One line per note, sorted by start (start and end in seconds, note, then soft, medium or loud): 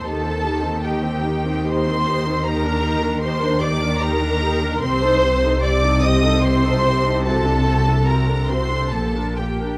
0.05 4.79 D#2 medium
0.05 4.79 D#3 medium
0.05 0.24 D#4 medium
0.05 0.24 G4 medium
0.05 0.84 A4 loud
0.05 0.84 A5 loud
0.25 0.45 C4 medium
0.25 0.43 D#4 medium
0.44 0.62 D#4 medium
0.44 0.64 G4 medium
0.63 0.84 C4 medium
0.63 0.82 D#4 medium
0.83 1.02 D#4 medium
0.83 1.03 G4 medium
0.83 1.68 G4 medium
0.83 1.68 G5 medium
1.03 1.25 C4 medium
1.03 1.24 D#4 medium
1.25 1.44 D#4 medium
1.25 1.46 G4 medium
1.46 1.67 C4 medium
1.46 1.66 D#4 medium
1.67 1.86 D#4 medium
1.67 1.86 G4 medium
1.67 2.47 C5 medium
1.67 2.47 C6 loud
1.87 2.07 C4 medium
1.87 2.06 D#4 medium
2.07 2.26 D#4 medium
2.07 2.27 G4 medium
2.27 2.47 C4 medium
2.27 2.44 D#4 medium
2.45 2.64 D#4 medium
2.45 2.64 G4 medium
2.45 3.24 A#4 loud
2.45 3.23 A#5 loud
2.64 2.84 D4 medium
2.64 2.84 A#4 medium
2.83 3.03 D#4 medium
2.83 3.03 G4 medium
3.03 3.23 D4 medium
3.03 3.22 A#4 medium
3.21 3.40 D#4 medium
3.21 3.40 G4 medium
3.21 3.62 C5 loud
3.21 3.61 C6 loud
3.41 3.61 D4 medium
3.41 3.61 A#4 medium
3.60 3.81 D#4 medium
3.60 3.81 G4 medium
3.60 4.02 D5 medium
3.60 4.02 D6 loud
3.81 4.02 D4 medium
3.81 4.02 A#4 medium
4.01 4.20 D#4 medium
4.01 4.20 G4 medium
4.01 4.83 A#4 loud
4.01 4.83 A#5 loud
4.21 4.42 D4 medium
4.21 4.42 A#4 medium
4.42 4.63 D#4 medium
4.42 4.63 G4 medium
4.63 4.83 D4 medium
4.63 4.83 A#4 medium
4.83 8.93 C2 loud
4.83 8.93 C3 medium
4.83 5.02 C4 medium
4.83 5.02 G4 medium
4.83 5.64 C5 loud
4.83 5.61 C6 loud
5.03 5.24 D#4 medium
5.03 5.24 A4 medium
5.24 5.44 C4 medium
5.24 5.44 G4 medium
5.44 5.64 D#4 medium
5.44 5.64 A4 medium
5.62 5.82 C4 medium
5.62 5.82 G4 medium
5.62 6.03 D5 loud
5.62 6.02 D6 loud
5.84 6.03 D#4 medium
5.84 6.04 A4 medium
6.03 6.24 C4 medium
6.03 6.24 G4 medium
6.03 6.45 D#5 loud
6.03 6.43 D#6 loud
6.24 6.44 D#4 medium
6.24 6.44 A4 medium
6.42 6.63 C4 medium
6.42 6.63 G4 medium
6.42 7.26 C5 loud
6.42 7.25 C6 loud
6.65 6.85 D#4 medium
6.65 6.85 A4 medium
6.85 7.06 C4 medium
6.85 7.06 G4 medium
7.05 7.26 D#4 medium
7.05 7.26 A4 medium
7.24 7.45 C4 medium
7.24 7.45 F#4 medium
7.24 8.07 A4 loud
7.24 8.05 A5 loud
7.46 7.66 D4 medium
7.46 7.67 A4 medium
7.66 7.87 C4 medium
7.66 7.87 F#4 medium
7.87 8.08 D4 medium
7.87 8.07 A4 medium
8.07 8.27 C4 medium
8.07 8.27 F#4 medium
8.07 8.50 A#4 medium
8.07 8.49 A#5 loud
8.29 8.50 D4 medium
8.29 8.50 A4 medium
8.48 8.72 C4 medium
8.48 8.72 F#4 medium
8.48 8.93 C5 medium
8.48 8.92 C6 loud
8.72 8.94 D4 medium
8.72 8.94 A4 medium
8.91 9.78 A#1 medium
8.91 9.78 A#2 medium
8.91 9.37 A4 medium
8.91 9.37 A5 loud
8.95 9.15 A#3 medium
8.95 9.15 G4 medium
9.16 9.38 D4 medium
9.16 9.38 A#4 medium
9.36 9.61 A#3 medium
9.36 9.78 G4 medium
9.36 9.61 G4 medium
9.36 9.78 G5 medium
9.62 9.78 D4 medium
9.62 9.78 A#4 medium